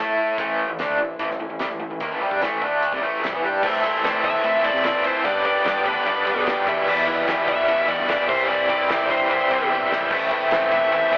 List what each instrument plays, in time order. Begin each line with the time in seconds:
Already playing: fingered electric bass A2, twelve-string acoustic guitar E3, overdriven electric guitar A3
0.00 twelve-string acoustic guitar C4, overdriven electric guitar E4 A4
0.38 fingered electric bass A1, overdriven electric guitar A2 E3 A3, twelve-string acoustic guitar C4 E4, kick, closed hi-hat
0.69 fingered electric bass A1, overdriven electric guitar A2 E3
0.78 fingered electric bass D2, overdriven electric guitar D3 A3 D4, twelve-string acoustic guitar E3 C4 E4, snare, closed hi-hat
0.99 fingered electric bass A1, overdriven electric guitar A2 E3, twelve-string acoustic guitar A3 C4 E4
1.19 fingered electric bass A1, overdriven electric guitar A2 E3, twelve-string acoustic guitar A3 C4 E4, kick, closed hi-hat
1.29 fingered electric bass A1, overdriven electric guitar A2 E3, snare
1.40 fingered electric bass A1, overdriven electric guitar A2 E3, twelve-string acoustic guitar A3 C4 E4
1.50 fingered electric bass A1, overdriven electric guitar A2 E3
1.59 fingered electric bass C2, overdriven electric guitar C3 G3, twelve-string acoustic guitar E3 A3 C4 E4, snare, closed hi-hat
1.70 fingered electric bass A1, overdriven electric guitar A2 E3
1.79 fingered electric bass A1, overdriven electric guitar A2 E3
1.90 fingered electric bass A1, overdriven electric guitar A2 E3
2.00 fingered electric bass D#2, twelve-string acoustic guitar A2 E3 A3 C4 E4, overdriven electric guitar D#3 A#3, kick, closed hi-hat
2.10 fingered electric bass A1, overdriven electric guitar A2 E3
2.21 fingered electric bass C2, overdriven electric guitar C3 G3
2.31 fingered electric bass G2, overdriven electric guitar G3 D4, kick
2.42 fingered electric bass A1, overdriven electric guitar A2 E3 A3, twelve-string acoustic guitar C4 E4, snare, closed hi-hat
2.61 fingered electric bass D2, overdriven electric guitar D3 A3 D4, twelve-string acoustic guitar C4 E4, kick
2.82 twelve-string acoustic guitar E3 A3 C4 E4, closed hi-hat
2.92 fingered electric bass C2, overdriven electric guitar C3 G3, kick
3.02 fingered electric bass A1, overdriven electric guitar A2 E3 A3, twelve-string acoustic guitar C4 E4
3.22 fingered electric bass C2, overdriven electric guitar C3 G3, twelve-string acoustic guitar E3 A3 C4 E4, snare, closed hi-hat
3.33 fingered electric bass E2, overdriven electric guitar E3 B3, kick
3.42 fingered electric bass G2, overdriven electric guitar G3 D4 G4
3.63 fingered electric bass A2, overdriven electric guitar A2 E3 C4 E4 A4, twelve-string acoustic guitar A3, upright piano C4 E4 A4 C5, tonewheel organ C4 E4 A4 E5, kick, crash
3.83 overdriven electric guitar A2 E3 C4 E4 A4, twelve-string acoustic guitar A3, kick, ride
4.03 fingered electric bass A2, overdriven electric guitar A2 E3 C4 E4 A4, twelve-string acoustic guitar A3, upright piano C4 E4 A4 D5, snare, ride
4.24 fingered electric bass E2, overdriven electric guitar A2 E3 C4 E4 A4, lead electric guitar E5, kick, ride
4.43 fingered electric bass A2, overdriven electric guitar A2 E3 C4 E4 A4, upright piano C4 E4 A4 C5, ride
4.63 fingered electric bass A2, overdriven electric guitar A2 E3 C4 E4 A4, twelve-string acoustic guitar A3, lead electric guitar D5, ride
4.74 fingered electric bass C3, snare
4.84 overdriven electric guitar A2 E3 C4 E4 A4, upright piano C4 E4 A4 C5, snare, ride
5.04 overdriven electric guitar A2 E3 C4 E4 A4, twelve-string acoustic guitar A3, lead electric guitar C5, ride
5.24 overdriven electric guitar G2 D3 G3 B3 D4 G4, fingered electric bass G2, upright piano B3 D4 G4 B4, tonewheel organ B3 D4 G4 D5, lead electric guitar D5, kick, ride
5.44 overdriven electric guitar G2 D3 G3 B3 D4 G4, lead electric guitar D5, kick, ride
5.65 fingered electric bass G2, overdriven electric guitar G2 D3 G3 B3 D4 G4, upright piano B3 D4 G4 B4, snare, ride
5.85 fingered electric bass D2, overdriven electric guitar G2 D3 G3 B3 D4 G4, lead electric guitar B4, kick, ride
6.06 overdriven electric guitar G2 D3 G3 B3 D4 G4, fingered electric bass G2, upright piano B3 D4 G4 B4, ride
6.26 overdriven electric guitar G2 D3 G3 B3 D4 G4, fingered electric bass G2, ride
6.35 fingered electric bass B2, snare
6.46 overdriven electric guitar G2 D3 G3 B3 D4 G4, upright piano B3 D4 G4 B4, snare, ride
6.66 overdriven electric guitar E2 B2 E3 G3 B3 E4, fingered electric bass E2, upright piano B3 E4 G4 B4, tonewheel organ B3 E4 G4 E5, kick, ride
6.87 overdriven electric guitar E2 B2 E3 G3 B3 E4, crash
7.07 overdriven electric guitar E2 B2 E3 G3 B3 E4, kick, ride
7.27 overdriven electric guitar E2 B2 E3 G3 B3 E4, fingered electric bass E2, upright piano B3 E4 G4 D5, snare, ride
7.47 fingered electric bass B1, overdriven electric guitar E2 B2 E3 G3 B3 E4, lead electric guitar E5, kick, ride
7.66 overdriven electric guitar E2 B2 E3 G3 B3 E4, fingered electric bass E2, upright piano B3 E4 G4 B4, ride
7.88 overdriven electric guitar E2 B2 E3 G3 B3 E4, fingered electric bass E2, lead electric guitar D5, ride
7.98 fingered electric bass G2
8.08 overdriven electric guitar E2 B2 E3 G3 B3 E4, upright piano B3 E4 G4 B4, snare, ride
8.28 fingered electric bass C2, overdriven electric guitar C3 E3 G3 C4 E4, upright piano C4 E4 G4 C5, tonewheel organ C4 E4 G4 E5, lead electric guitar C5, kick, crash
8.48 overdriven electric guitar C3 E3 G3 C4 E4, lead electric guitar D5
8.69 overdriven electric guitar C3 E3 G3 C4 E4, lead electric guitar D5, kick, ride
8.89 fingered electric bass C2, overdriven electric guitar C3 E3 G3 C4 E4, upright piano C4 E4 G4 D5, snare, ride
9.09 fingered electric bass G2, overdriven electric guitar C3 E3 G3 C4 E4, lead electric guitar C5, kick, ride
9.29 fingered electric bass C2, overdriven electric guitar C3 E3 G3 C4 E4, upright piano C4 E4 G4 C5, ride
9.50 fingered electric bass C2, overdriven electric guitar C3 E3 G3 C4 E4, ride
9.60 fingered electric bass E2
9.70 overdriven electric guitar C3 E3 G3 C4 E4, upright piano C4 E4 G4 C5, kick
9.81 mid tom
9.90 overdriven electric guitar C3 E3 G3 C4 E4, snare
10.01 floor tom
10.10 fingered electric bass A1, overdriven electric guitar A2 E3 A3 C4 E4, upright piano C4 E4 A4 C5, tonewheel organ C4 E4 A4 E5, kick, crash
10.31 overdriven electric guitar A2 E3 A3 C4 E4, kick, ride
10.51 fingered electric bass A1, overdriven electric guitar A2 E3 A3 C4 E4, upright piano C4 E4 A4 C5, snare, ride
10.72 fingered electric bass E2, overdriven electric guitar A2 E3 A3 C4 E4, lead electric guitar E5, kick, ride
10.91 fingered electric bass A1, overdriven electric guitar A2 E3 A3 C4 E4, upright piano C4 E4 A4 C5, ride
11.11 fingered electric bass A1, overdriven electric guitar A2 E3 A3 C4 E4, lead electric guitar D5, ride